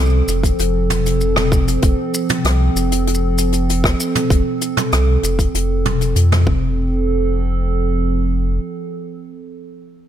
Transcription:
Already playing: C2 F3 C4 A4
0.02 shaker
0.05 shaker
0.10 shaker
0.28 F1, closed hi-hat, shaker
0.43 kick, closed hi-hat, shaker
0.59 F1, closed hi-hat, shaker
0.90 closed hi-hat, mid tom, shaker
1.06 closed hi-hat, shaker
1.21 shaker
1.36 cross-stick, mid tom
1.52 kick, shaker
1.68 closed hi-hat, shaker
1.82 F1, kick, closed hi-hat, shaker
2.14 shaker
2.30 closed hi-hat, mid tom, shaker
2.44 C2, cross-stick, closed hi-hat, shaker
2.75 F1, closed hi-hat, shaker
2.92 closed hi-hat, shaker
3.07 closed hi-hat
3.14 shaker
3.38 closed hi-hat, shaker
3.52 closed hi-hat, shaker
3.70 closed hi-hat, shaker
3.84 kick, cross-stick
4.00 shaker
4.15 closed hi-hat, mid tom, shaker
4.30 F1, kick, closed hi-hat, shaker
4.61 closed hi-hat, shaker
4.77 closed hi-hat, mid tom, shaker
4.93 C2, cross-stick, closed hi-hat, shaker
5.23 F1, closed hi-hat, shaker
5.39 kick, closed hi-hat, shaker
5.54 F1, closed hi-hat, shaker
5.85 closed hi-hat, mid tom
6.01 closed hi-hat, shaker
6.16 F2, closed hi-hat, shaker
6.32 cross-stick, mid tom
6.47 F1 F3 C4 A4, kick

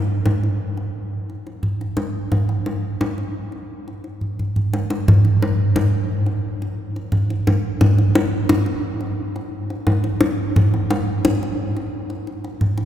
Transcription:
0.26 kendang slap, kendang high, kendang low
0.43 kendang slap
0.77 kendang slap
1.30 kendang slap
1.47 kendang slap
1.63 kendang low
1.81 kendang slap
1.97 kendang slap, kendang high, kendang low
2.32 kendang high, kendang low
2.49 kendang slap
2.66 kendang slap, kendang high
3.01 kendang slap, kendang high, kendang low
3.18 kendang slap
3.52 kendang slap
3.88 kendang slap
4.04 kendang slap
4.21 kendang low
4.39 kendang low
4.56 kendang low
4.73 kendang high
4.90 kendang high
5.08 kendang low
5.25 kendang slap
5.42 kendang slap, kendang high
5.76 kendang slap, kendang high, kendang low
6.26 kendang slap
6.62 kendang slap
6.96 kendang slap
7.12 kendang low
7.30 kendang slap
7.47 kendang slap, kendang high, kendang low
7.81 kendang high, kendang low
7.98 kendang slap
8.15 kendang slap, kendang high
8.49 kendang slap, kendang high, kendang low
8.66 kendang slap
9.01 kendang slap
9.36 kendang slap
9.70 kendang slap
9.87 kendang high, kendang low
10.04 kendang slap
10.21 kendang slap, kendang high, kendang low
10.56 kendang low
10.74 kendang slap
10.90 kendang slap, kendang high
11.25 kendang slap, kendang high, kendang low
11.43 kendang slap
11.77 kendang slap
12.10 kendang slap
12.27 kendang slap
12.44 kendang slap
12.61 kendang low
12.78 kendang slap

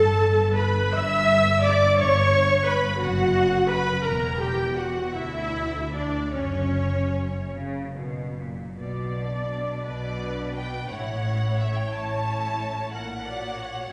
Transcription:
Already playing: G1 G2 A4 A5
0.56 B4 B5
0.94 G1 G2 E5 E6
1.63 D5 D6
1.97 G1 G2 C#5 C#6
2.66 B4 B5
3.01 F#1 F#2 F#4 F#5
3.69 B4 B5
4.04 E1 E2 A#4 A#5
4.40 G4 G5
4.76 F#4 F#5
5.13 D2 E4 E5
5.92 D4 D5
6.33 F#1 F#2 C#4 C#5
7.54 F#1 C#3
7.96 B2
8.38 A#2
8.78 B1 B2 D5
9.14 D4 D5
9.86 B1 B2 B4 D5
10.21 D4 D5
10.55 G5
10.89 A1 A2 E4 C#5 F#5
11.23 E4 C#5
11.59 E5
11.76 G5
11.92 A1 A2 A5
12.27 E4 C#5
12.93 A#1 A#2 A#4 F#5
13.25 F#4 C#5 D5
13.59 C#5

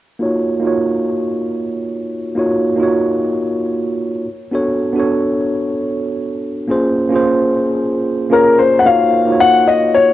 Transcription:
0.20 A#3 D#4 F4 F#4 C#5
0.60 A#3 D#4 F4
0.65 F#4 C#5
2.35 A#3 D#4 F4 F#4 C#5
2.76 A#3 D#4 F4
2.81 F#4 C#5
4.51 B3 D4 F#4 A4 C#5
4.92 B3 D4 F#4
4.98 A4 C#5
6.67 A#3 C#4 F4 G#4 C5
7.09 A#3 C#4 F4
7.14 G#4 C5
8.30 A#3 C#4 F4 G#4 A#4 C#5
8.59 C5
8.79 F#5
8.84 A#3 D#4 F4 F#4 C#5 F5
9.25 A#3 D#4 F4
9.30 F#4 C#5
9.40 F#5
9.67 D#5
9.94 C#5

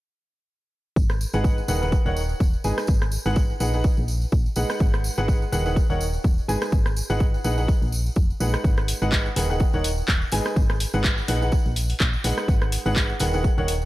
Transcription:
0.96 G#1, kick, tambourine
1.09 cross-stick, tambourine
1.21 tambourine
1.33 G#1 G#3 D#4 G#4 B4 F#5, tambourine
1.44 kick, tambourine
1.58 tambourine
1.68 D#1 D#3 D#4 G#4 B4 F#5, tambourine
1.82 D#3 D#4 G#4 B4 F#5, tambourine
1.92 kick, tambourine
2.06 D#1 D#3 D#4 A#4 C#5 F#5, tambourine
2.17 tambourine
2.29 tambourine
2.40 D#1, kick, tambourine
2.53 tambourine
2.64 G#1 G#3 D#4 G#4 B4 G#5, tambourine
2.78 cross-stick, tambourine
2.87 G#1, kick, tambourine
3.02 cross-stick, tambourine
3.12 tambourine
3.26 G#1 G#3 D#4 G#4 B4 F#5, tambourine
3.36 kick, tambourine
3.50 tambourine
3.60 A#1 D#4 G#4 B4 F#5, tambourine
3.73 D#4 G#4 B4 F#5, tambourine
3.84 kick, tambourine
3.97 A#1, tambourine
4.08 tambourine
4.21 tambourine
4.32 A#1, kick, tambourine
4.46 tambourine
4.56 A#1 G#3 D#4 G#4 B4 F#5, tambourine
4.70 cross-stick, tambourine
4.80 G#1, kick, tambourine
4.94 cross-stick, tambourine
5.04 tambourine
5.17 G#1 G#3 D#4 G#4 B4 F#5, tambourine
5.28 kick, tambourine
5.42 tambourine
5.52 D#1 D#3 D#4 G#4 B4 F#5, tambourine
5.66 D#3 D#4 G#4 B4 F#5, tambourine
5.76 kick, tambourine
5.90 D#1 D#3 D#4 A#4 C#5 F#5, tambourine
6.01 tambourine
6.13 tambourine
6.24 D#1, kick, tambourine
6.38 tambourine
6.48 G#1 G#3 D#4 G#4 B4 G#5, tambourine
6.62 cross-stick, tambourine
6.72 G#1, kick, tambourine
6.86 cross-stick, tambourine
6.96 tambourine
7.10 G#1 G#3 D#4 G#4 B4 F#5, tambourine
7.20 kick, tambourine
7.34 tambourine
7.44 A#1 D#4 G#4 B4 F#5, tambourine
7.58 D#4 G#4 B4 F#5, tambourine
7.68 kick, tambourine
7.82 A#1, tambourine
7.92 tambourine
8.06 tambourine
8.16 F1, kick, tambourine
8.30 tambourine
8.40 A#1 G#3 D#4 G#4 B4 F#5, tambourine
8.54 cross-stick, tambourine
8.64 G#1, kick, tambourine
8.77 cross-stick, tambourine
8.88 open hi-hat, tambourine
9.02 G#1 G#3 D#4 G#4 B4 F#5, tambourine
9.12 kick, clap, tambourine
9.26 tambourine
9.36 D#1 D#3 D#4 G#4 B4 F#5, open hi-hat, tambourine
9.50 D#3 D#4 G#4 B4 F#5, tambourine
9.60 kick, tambourine
9.73 D#1 D#3 D#4 A#4 C#5 F#5, tambourine
9.84 open hi-hat, tambourine
9.98 tambourine
10.08 D#1, kick, clap, tambourine
10.22 tambourine
10.32 G#1 G#3 D#4 G#4 B4 G#5, open hi-hat, tambourine
10.45 cross-stick, tambourine
10.56 G#1, kick, tambourine
10.70 cross-stick, tambourine
10.80 open hi-hat, tambourine
10.94 G#1 G#3 D#4 G#4 B4 F#5, tambourine
11.04 kick, clap, tambourine
11.18 tambourine
11.28 A#1 D#4 G#4 B4 F#5, open hi-hat, tambourine
11.42 D#4 G#4 B4 F#5, tambourine
11.52 kick, tambourine
11.66 A#1, tambourine
11.76 open hi-hat, tambourine
11.89 open hi-hat, tambourine
12.00 A#1, kick, clap, tambourine
12.13 tambourine
12.24 A#1 G#3 D#4 G#4 B4 F#5, open hi-hat, tambourine
12.38 cross-stick, tambourine
12.48 G#1, kick, tambourine
12.61 cross-stick, tambourine
12.72 open hi-hat, tambourine
12.86 G#1 G#3 D#4 G#4 B4 F#5, tambourine
12.96 kick, clap, tambourine
13.09 tambourine
13.20 D#1 D#3 D#4 G#4 B4 F#5, open hi-hat, tambourine
13.33 D#3 D#4 G#4 B4 F#5, tambourine
13.44 kick, tambourine
13.58 D#1 D#3 D#4 A#4 C#5 F#5, tambourine
13.68 open hi-hat, tambourine
13.82 tambourine

